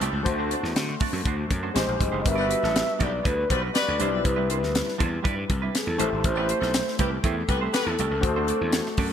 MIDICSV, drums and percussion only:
0, 0, Header, 1, 2, 480
1, 0, Start_track
1, 0, Key_signature, 1, "major"
1, 0, Tempo, 498339
1, 250, Time_signature, 4, 2, 24, 8
1, 8792, End_track
2, 0, Start_track
2, 0, Title_t, "Drums"
2, 13, Note_on_c, 9, 42, 73
2, 110, Note_off_c, 9, 42, 0
2, 251, Note_on_c, 9, 36, 101
2, 252, Note_on_c, 9, 42, 88
2, 347, Note_off_c, 9, 36, 0
2, 348, Note_off_c, 9, 42, 0
2, 492, Note_on_c, 9, 42, 73
2, 588, Note_off_c, 9, 42, 0
2, 622, Note_on_c, 9, 38, 33
2, 718, Note_off_c, 9, 38, 0
2, 732, Note_on_c, 9, 42, 92
2, 737, Note_on_c, 9, 38, 114
2, 828, Note_off_c, 9, 42, 0
2, 833, Note_off_c, 9, 38, 0
2, 964, Note_on_c, 9, 46, 74
2, 971, Note_on_c, 9, 36, 91
2, 1061, Note_off_c, 9, 46, 0
2, 1067, Note_off_c, 9, 36, 0
2, 1209, Note_on_c, 9, 36, 91
2, 1211, Note_on_c, 9, 42, 69
2, 1305, Note_off_c, 9, 36, 0
2, 1307, Note_off_c, 9, 42, 0
2, 1450, Note_on_c, 9, 36, 79
2, 1451, Note_on_c, 9, 42, 70
2, 1547, Note_off_c, 9, 36, 0
2, 1548, Note_off_c, 9, 42, 0
2, 1692, Note_on_c, 9, 42, 89
2, 1698, Note_on_c, 9, 38, 92
2, 1789, Note_off_c, 9, 42, 0
2, 1795, Note_off_c, 9, 38, 0
2, 1932, Note_on_c, 9, 36, 80
2, 1937, Note_on_c, 9, 42, 73
2, 2028, Note_off_c, 9, 36, 0
2, 2034, Note_off_c, 9, 42, 0
2, 2173, Note_on_c, 9, 36, 97
2, 2175, Note_on_c, 9, 42, 89
2, 2270, Note_off_c, 9, 36, 0
2, 2271, Note_off_c, 9, 42, 0
2, 2414, Note_on_c, 9, 42, 74
2, 2510, Note_off_c, 9, 42, 0
2, 2542, Note_on_c, 9, 38, 30
2, 2639, Note_off_c, 9, 38, 0
2, 2656, Note_on_c, 9, 42, 90
2, 2660, Note_on_c, 9, 38, 125
2, 2752, Note_off_c, 9, 42, 0
2, 2756, Note_off_c, 9, 38, 0
2, 2892, Note_on_c, 9, 42, 70
2, 2896, Note_on_c, 9, 36, 85
2, 2989, Note_off_c, 9, 42, 0
2, 2992, Note_off_c, 9, 36, 0
2, 3133, Note_on_c, 9, 36, 87
2, 3138, Note_on_c, 9, 42, 67
2, 3230, Note_off_c, 9, 36, 0
2, 3234, Note_off_c, 9, 42, 0
2, 3373, Note_on_c, 9, 36, 71
2, 3374, Note_on_c, 9, 42, 78
2, 3469, Note_off_c, 9, 36, 0
2, 3470, Note_off_c, 9, 42, 0
2, 3612, Note_on_c, 9, 42, 90
2, 3618, Note_on_c, 9, 38, 93
2, 3708, Note_off_c, 9, 42, 0
2, 3714, Note_off_c, 9, 38, 0
2, 3849, Note_on_c, 9, 42, 70
2, 3946, Note_off_c, 9, 42, 0
2, 4093, Note_on_c, 9, 42, 83
2, 4094, Note_on_c, 9, 36, 86
2, 4190, Note_off_c, 9, 36, 0
2, 4190, Note_off_c, 9, 42, 0
2, 4333, Note_on_c, 9, 42, 78
2, 4429, Note_off_c, 9, 42, 0
2, 4463, Note_on_c, 9, 38, 30
2, 4559, Note_off_c, 9, 38, 0
2, 4576, Note_on_c, 9, 42, 98
2, 4581, Note_on_c, 9, 38, 127
2, 4672, Note_off_c, 9, 42, 0
2, 4677, Note_off_c, 9, 38, 0
2, 4705, Note_on_c, 9, 38, 33
2, 4801, Note_off_c, 9, 38, 0
2, 4820, Note_on_c, 9, 36, 85
2, 4820, Note_on_c, 9, 42, 71
2, 4916, Note_off_c, 9, 36, 0
2, 4916, Note_off_c, 9, 42, 0
2, 5057, Note_on_c, 9, 36, 88
2, 5064, Note_on_c, 9, 42, 68
2, 5153, Note_off_c, 9, 36, 0
2, 5160, Note_off_c, 9, 42, 0
2, 5295, Note_on_c, 9, 36, 83
2, 5297, Note_on_c, 9, 42, 75
2, 5391, Note_off_c, 9, 36, 0
2, 5393, Note_off_c, 9, 42, 0
2, 5536, Note_on_c, 9, 42, 95
2, 5542, Note_on_c, 9, 38, 83
2, 5633, Note_off_c, 9, 42, 0
2, 5639, Note_off_c, 9, 38, 0
2, 5774, Note_on_c, 9, 42, 81
2, 5871, Note_off_c, 9, 42, 0
2, 6012, Note_on_c, 9, 42, 85
2, 6014, Note_on_c, 9, 36, 88
2, 6108, Note_off_c, 9, 42, 0
2, 6110, Note_off_c, 9, 36, 0
2, 6250, Note_on_c, 9, 42, 70
2, 6347, Note_off_c, 9, 42, 0
2, 6381, Note_on_c, 9, 38, 31
2, 6477, Note_off_c, 9, 38, 0
2, 6492, Note_on_c, 9, 42, 94
2, 6496, Note_on_c, 9, 38, 119
2, 6588, Note_off_c, 9, 42, 0
2, 6592, Note_off_c, 9, 38, 0
2, 6626, Note_on_c, 9, 38, 28
2, 6722, Note_off_c, 9, 38, 0
2, 6731, Note_on_c, 9, 42, 67
2, 6735, Note_on_c, 9, 36, 83
2, 6828, Note_off_c, 9, 42, 0
2, 6831, Note_off_c, 9, 36, 0
2, 6972, Note_on_c, 9, 36, 87
2, 6975, Note_on_c, 9, 42, 72
2, 7068, Note_off_c, 9, 36, 0
2, 7071, Note_off_c, 9, 42, 0
2, 7211, Note_on_c, 9, 36, 74
2, 7211, Note_on_c, 9, 42, 72
2, 7307, Note_off_c, 9, 36, 0
2, 7307, Note_off_c, 9, 42, 0
2, 7453, Note_on_c, 9, 42, 99
2, 7460, Note_on_c, 9, 38, 104
2, 7550, Note_off_c, 9, 42, 0
2, 7556, Note_off_c, 9, 38, 0
2, 7692, Note_on_c, 9, 42, 73
2, 7789, Note_off_c, 9, 42, 0
2, 7930, Note_on_c, 9, 36, 98
2, 7930, Note_on_c, 9, 42, 82
2, 8026, Note_off_c, 9, 36, 0
2, 8026, Note_off_c, 9, 42, 0
2, 8168, Note_on_c, 9, 42, 71
2, 8264, Note_off_c, 9, 42, 0
2, 8404, Note_on_c, 9, 42, 92
2, 8408, Note_on_c, 9, 38, 127
2, 8500, Note_off_c, 9, 42, 0
2, 8504, Note_off_c, 9, 38, 0
2, 8533, Note_on_c, 9, 38, 28
2, 8629, Note_off_c, 9, 38, 0
2, 8643, Note_on_c, 9, 46, 75
2, 8649, Note_on_c, 9, 36, 90
2, 8739, Note_off_c, 9, 46, 0
2, 8745, Note_off_c, 9, 36, 0
2, 8792, End_track
0, 0, End_of_file